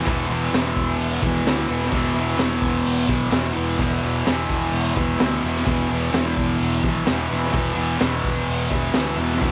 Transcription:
0.04 E1 E2 B2, kick, open hi-hat
0.09 E3
0.27 E1 E3
0.32 B2
0.51 E1 E2 B2, snare, open hi-hat
0.56 E3
0.76 E1, kick
0.99 E1, open hi-hat
1.22 E1 E3, kick
1.26 B2
1.45 D2 E2 B2, snare, open hi-hat
1.50 E3
1.68 E1 E3
1.72 B2
1.81 snare
1.89 E1 E2 B2 E3, kick, open hi-hat
2.14 E1 E3
2.19 B2
2.37 E1 E2 B2, snare, open hi-hat
2.42 E3
2.62 E1, kick
2.86 E1, open hi-hat
3.08 B1 E3, kick
3.12 B2
3.31 E1 E2 B2, snare, open hi-hat
3.35 E3
3.53 E1 E3
3.58 B2
3.78 E1 E2 B2, kick, open hi-hat
3.83 E3
4.02 E1 E3
4.07 B2
4.25 E1 E2 B2, snare, open hi-hat
4.30 E3
4.49 E1, kick
4.72 E1, open hi-hat
4.96 E1 E3, kick
5.00 B2
5.18 D2 E2 B2, snare, open hi-hat
5.23 E3
5.42 E1 E3
5.47 B2
5.56 snare
5.64 E1 E2 B2, kick, open hi-hat
5.69 E3
5.89 E1 E3
5.93 B2
6.11 E1 E2 B2, snare, open hi-hat
6.16 E3
6.37 E1, kick
6.60 E1, open hi-hat
6.83 B1 E3, kick
6.87 B2
7.06 E1 E2 B2, snare, open hi-hat
7.10 E3
7.29 E1 E3
7.34 B2
7.44 snare
7.51 E1 E2 B2, kick, open hi-hat
7.55 E3
7.74 E1 E3
7.79 B2
7.98 E1 E2 B2, snare, open hi-hat
8.03 E3
8.23 E1, kick
8.47 E1, open hi-hat
8.70 E1 B2 E3, kick
8.93 D2 E2 B2 E3, snare, open hi-hat
9.16 E1 E3
9.21 B2
9.30 snare
9.38 E1 E2 B2, kick, open hi-hat
9.43 E3

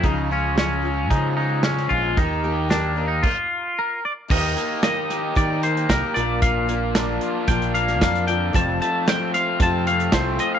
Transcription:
0.04 C#2 C#3 F3 G#3 C#4 D#4 F4 G#4, kick, closed hi-hat
0.31 C#3 F3 G#3 C#4 F4
0.55 C#3 F3 G#3 C#4 F4 G#4, snare, closed hi-hat
0.59 F4
0.82 G#3 C#4 F4
1.10 C#3 F3 G#3 C#4 D#4 F4 G#4, kick, closed hi-hat
1.37 C#4 D#4 F4
1.42 G#3
1.63 C#4 F4 G#4, snare, closed hi-hat
1.77 snare
1.89 A#1 C#4 F4, kick
1.93 G#3
2.17 D#2 D#3 A#3 D#4 G4 A#4, kick, closed hi-hat
2.44 D#3 A#3 D#4 G4
2.69 D#3 A#3 D4 G4 A#4, snare, closed hi-hat
2.95 A#3 D#4 G4
3.08 D#4
3.23 F4, kick, crash
3.79 A#4
4.05 D5
4.28 D#2 D#3 A#3 D#4 G4 A#4 D#5, kick, crash
4.32 G4
4.55 A#3 D#4 G4, closed hi-hat
4.82 D#3 A#3 D#4 G4 A#4 D#5, snare, closed hi-hat
5.10 G4, snare, closed hi-hat
5.35 D#3 A#3 D#4 G4 A#4 D5, kick, closed hi-hat
5.63 A#3 C5, closed hi-hat
5.77 closed hi-hat
5.89 C2 D#3 A#3 D#4 G4 A#4, kick, snare, closed hi-hat
6.14 A#1 A#2 F3 A#3 D4 F4 A#4 D5, closed hi-hat
6.42 A#2 F5, kick, closed hi-hat
6.67 A#3 D4 F4, closed hi-hat
6.95 F3 A#3 D4 F4 A#4, snare, closed hi-hat
7.21 F4, closed hi-hat
7.47 A#1 A#2 F3 A#3 D4 F4 A#4 G5, kick, closed hi-hat
7.62 closed hi-hat
7.74 A#3 F5, closed hi-hat
7.88 snare, closed hi-hat
8.01 F2 F3 A#3 D4 F4 A#4 F5, kick, snare, closed hi-hat
8.15 closed hi-hat
8.27 D3 A#3 D4 F4 G5, closed hi-hat
8.53 F1 F2 C3 F3 A3 C4 F4 A4 C5 A5, kick, closed hi-hat
8.80 F3 A3 C4 F4 A5, closed hi-hat
9.06 F3 A3 C4 F4 A4 C5 G5, snare, closed hi-hat
9.34 F4 F5, snare, closed hi-hat
9.59 F2 C3 F3 A3 C4 F4 A4 C5 A5, kick, closed hi-hat
9.87 A3 F5, closed hi-hat
10.00 closed hi-hat
10.12 C2 F3 A3 C4 F4 A4 C5, kick, snare, closed hi-hat
10.39 A3 C4 F4 D#5, closed hi-hat
10.43 F3
10.54 F5

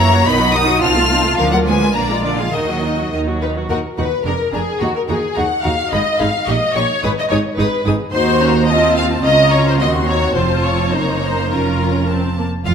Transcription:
Already playing: F#2 E3 A#3 E4 C#5 A#5
0.12 F#3 F#4
0.26 B1 D#3 B3 D#4 D#5 B5
0.39 F#3 F#4
0.53 D#3 D#4 F#5 D#6
0.67 F#3 F#4
0.81 C2 C4 D#4 F4 A5 F6
0.96 A3 F4
1.10 C4 D#4
1.24 A3 F4
1.37 D2 F3 D4 A#4 F5
1.52 F#3 A#3 F4 A#4 F#5
1.66 F3 G#3 D4 B4 G#5
1.81 A#3 F4
1.94 A#1 A#3 D4 D5 A#5
2.09 G#3 F4
2.23 D3 A#3 D4 F4 D5
2.38 F3 G#3 F4 G#4 F5
2.52 D#2 D#3 D#4 F#4 D#5
2.68 F#3 F#4
2.83 D#3 D#4
2.97 F#3 F#4
3.12 D#2 D#3 D#4 D#5
3.27 F#3 F#4
3.42 D#3 D#4 B4
3.56 F#3 F#4
3.69 D#2 D#4 F#4 A#4 F#5
3.97 D#2 D#4 F#4 B4 F#5
4.25 F1 F2 D4 G#4 A#4 A#5
4.53 F1 F2 D4 G#4 A#5
4.81 D#2 D#4 F#4 A#5
4.96 A#4
5.08 D#2 D#4 F#4 G#4 A#5
5.35 D#2 D#4 F#4 F#5 A#5
5.63 D#2 D#4 F#4 F5 A#5
5.92 G#1 G#2 D#4 G#4 D#5 B5
6.19 G#1 G#2 D#4 G#4 F5 B5
6.46 A#1 A#2 D#4 G4 D#5 C#6
6.75 A#1 A#2 D#4 G4 C#5 C#6
7.03 G#1 G#2 D#4 G#4 B4 D#6
7.19 D#5
7.30 G#1 G#2 D#4 G#4 C#5 D#6
7.58 G#1 G#2 D#4 G#4 B4 D#6
7.86 G#1 G#2 D#4 G#4 D#6
8.13 D#2 D#4 F#4 C5 C6
8.41 C#4 A#5
8.68 C4 F4 D#5 A5
8.97 F5
9.24 C#2 C#4 F4 D#5 A#5
9.52 C#5
9.68 C5
9.80 D#2 C4 F#4 D#5 C6
10.07 C#5 A#5
10.35 F1 F2 C4 F4 C5 A5
10.64 C#5
10.92 F#1 F#2 A#3 D#4 C5 A#5
11.00 C#5
11.09 C5
11.19 C#5
11.27 C5
11.50 F1 F2 C#4 F4 A#4 A#5
12.08 C4 A5
12.37 A#3
12.66 F1 F2 F4 F5

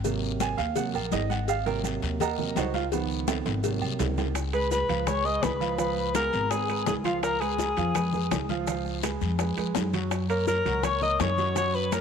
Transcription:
Already playing: G#1
0.04 C3 F#3 A#3, cowbell, high conga, low agogo, long guiro, maracas
0.23 high conga, maracas
0.40 G#5, cowbell, high conga, low timbale, low agogo, short guiro, maracas
0.58 D#2 F5, cowbell, short guiro, maracas
0.76 C3 F#3 A#3 F#5, cowbell, high conga, low agogo, long guiro, maracas
0.94 A#1 A#4, high conga, low agogo, maracas
1.12 G#1 D#5, cowbell, high conga, low timbale, short guiro, maracas
1.30 F#5, high conga, low agogo, short guiro, maracas
1.48 F5, cowbell, high conga, low agogo, long guiro, maracas
1.66 C3 F#3 A#3 A#4, cowbell, high conga, low agogo, maracas
1.84 cowbell, high conga, low timbale, low agogo, short guiro, maracas
2.02 D#2, cowbell, high conga, short guiro, maracas
2.20 A#4 D#5 F#5 A#5, cowbell, high conga, low conga, low agogo, long guiro, maracas
2.38 C3 F#3 A#3, high conga, low conga, maracas
2.56 C#2 F#4 C5 D#5 F#5, cowbell, high conga, low timbale, low agogo, short guiro, maracas
2.74 F4 F5, cowbell, high conga, short guiro, maracas
2.92 D#3 F3 B3, cowbell, high conga, low agogo, long guiro, maracas
3.10 high conga, maracas
3.28 cowbell, high conga, high timbale, low agogo, short guiro, maracas
3.46 G#1, cowbell, high timbale, short guiro, maracas
3.63 C3 F#3 A#3, cowbell, high conga, low agogo, long guiro, maracas
3.81 C2, high conga, low agogo, maracas
3.99 C#2, cowbell, high conga, low timbale, short guiro, maracas
4.18 high conga, low timbale, low agogo, short guiro, maracas
4.35 high bongo, high conga, high timbale, long guiro, maracas
4.53 G#3 G#4 B4 B5, high conga, high timbale, maracas
4.71 B4 B5, high bongo, high conga, low timbale, short guiro, maracas
4.88 C#2 F3 F4 F5, high bongo, high conga, high timbale, short guiro, maracas
5.07 G#3 G#4 B4 C#5 C#6, high bongo, high conga, low conga, high timbale, long guiro, maracas
5.24 G#3 G#4 B4 D#5 D#6, high bongo, high conga, maracas
5.43 C#2 B4 B5, high bongo, low bongo, high conga, high timbale, low timbale, short guiro, maracas
5.60 F3 F4 F5, high bongo, short guiro, maracas
5.78 F3 F4 B4 F5 B5, high bongo, high conga, high timbale, long guiro, maracas
5.96 high bongo, high conga, maracas
6.15 G#3 B3 G#4 A#4 A#5, high bongo, high conga, high timbale, low timbale, short guiro, maracas
6.33 G#1, short guiro, maracas
6.51 G#3 G#4 B4 G#5, high bongo, high conga, high timbale, long guiro, maracas
6.69 G#3 G#4 B4, high bongo, high conga, high timbale, maracas
6.86 C#2 G#4 G#5, high bongo, low bongo, high conga, low timbale, short guiro, maracas
7.04 F3 F4 F5, high bongo, high conga, high timbale, short guiro, maracas
7.23 A#4 A#5, high bongo, high conga, high timbale, long guiro, maracas
7.41 G#3 G#4 B4 G#5, high conga, high timbale, maracas
7.58 high bongo, high conga, low timbale, short guiro, maracas
7.77 F2 F3 F4 F5, high bongo, high conga, high timbale, short guiro, maracas
7.95 G#3 G#4 B4, high bongo, high conga, low conga, high timbale, long guiro, maracas
8.13 G#3 G#4 B4, high bongo, high conga, low conga, maracas
8.31 C#2, high bongo, low bongo, high conga, high timbale, low timbale, short guiro, maracas
8.49 F3 F4 F5, high bongo, high conga, short guiro, maracas
8.67 F3 F4 F5, high bongo, high conga, high timbale, long guiro, maracas
8.85 high bongo, high conga, maracas
9.03 G#3 G#4 B4, high bongo, high conga, high timbale, low timbale, short guiro, maracas
9.21 F2, high conga, short guiro, maracas
9.39 G#3 G#4 B4, high bongo, high timbale, long guiro, maracas
9.57 F2 G#3 G#4 B4, high bongo, high timbale, maracas
9.75 F#2, high bongo, low bongo, low conga, low timbale, short guiro, maracas
9.93 F#3 F#4 F#5, high bongo, low conga, high timbale, short guiro, maracas
10.11 high bongo, high timbale, long guiro, maracas
10.29 A#3 A#4 C#5 A#5, high conga, high timbale, maracas
10.47 A#4 A#5, high bongo, high conga, low timbale, short guiro, maracas
10.65 C#2 F#3 F#4 F#5, high bongo, high conga, high timbale, short guiro, maracas
10.83 A#3 A#4 C#5 C#6, high bongo, high conga, low conga, high timbale, long guiro, maracas
11.01 A#3 A#4 C#5 D#5 D#6, high bongo, high conga, low conga, maracas
11.20 F#2 C#5 C#6, high bongo, low bongo, high conga, high timbale, low timbale, short guiro, maracas
11.38 F#3 F#4 F#5, high bongo, short guiro, maracas
11.56 F#3 F#4 C#5 F#5 C#6, high bongo, high conga, high timbale, long guiro, maracas
11.74 B4 B5, high bongo, high conga, maracas
11.92 A#3 A#4 C#5 A#5, high bongo, high conga, high timbale, low timbale, short guiro, maracas

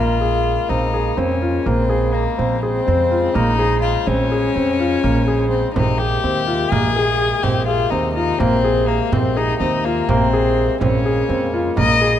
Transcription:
Already playing: A#1 C#3 G#3 A#3 F4
0.21 G#4
0.69 A#1 C4 D#4
0.94 G#4
1.17 F2 C4 C#4
1.42 F4
1.66 A#1 A#3 C4
1.90 G#4
2.14 A#3
2.38 A#1 C4 C5
2.62 C4 G#4
2.87 F2 C4
3.11 F4
3.34 A#1 A#3 D#4
3.59 G#4
3.82 F4
4.07 A#1 C4 C#4
4.32 G#4
4.56 F2 C4
4.79 F4
5.04 A#1 A#3
5.28 G#4
5.51 C4
5.74 A#1 C3 G#3 A#3 C4 D#4, frame drum
5.98 G4 G#4
6.24 D#2 C4
6.47 F4
6.70 A#1 A#3 G#4, frame drum
6.96 G#4
7.43 A#1 C4 G4, frame drum
7.67 F4 G#4
7.90 D#2 C4 D#4
8.14 D#4 F4
8.39 A#1 A#3 C4, frame drum
8.64 G#4
8.88 A#3
9.12 A#1 C4, frame drum
9.37 D#4 G#4
9.60 D#2 C4 D#4
9.84 A#3 F4
10.09 A#1 A#3 C4, frame drum
10.34 G#4
10.81 A#1 C#3 A#3 C4 C#4, frame drum
11.06 G#4
11.29 F2 C4
11.54 F4
11.77 A#1 A#3 D#5, frame drum
12.02 G#4

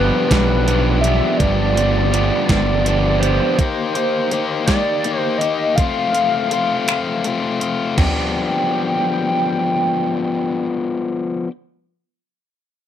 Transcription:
Already playing: G1 G2 F3 B3 D4 G4 B4
0.28 B1 F3 B3 D4 G4 B4, kick, snare, closed hi-hat
0.67 F3 B3 D4 G4, closed hi-hat
1.01 D4 G4 E5, closed hi-hat
1.05 B3
1.37 G1 G2 F3 B3 D5, kick, closed hi-hat
1.41 D4 G4
1.75 F3 B3 D4 G4, closed hi-hat
2.12 F3 B3 D4 G4, closed hi-hat
2.46 G1 F3 D4 G4 D5, kick, closed hi-hat
2.50 B3, snare
2.86 F3 B3 D4 G4, closed hi-hat
3.20 D4 G4 C5, closed hi-hat
3.24 B3
3.59 A#3 D#4 G4, kick, closed hi-hat
3.95 D#4 G4, closed hi-hat
4.31 A#3 D#4 G4, closed hi-hat
4.66 D#4 G4 D5, kick, snare, closed hi-hat
5.04 A#3 D#4 G4, closed hi-hat
5.18 C5
5.38 G4 D#5, closed hi-hat
5.44 D#4
5.76 A3 C4 F5, kick, closed hi-hat
5.80 F4
6.13 C4 F4, closed hi-hat
6.51 A3 C4 F4, closed hi-hat
6.88 C4 F4, finger snap, closed hi-hat
7.24 A3 C4 F4, closed hi-hat
7.60 C4 F4, closed hi-hat
7.97 F3 B3 D4 G5, kick, floor tom, crash
8.01 G4

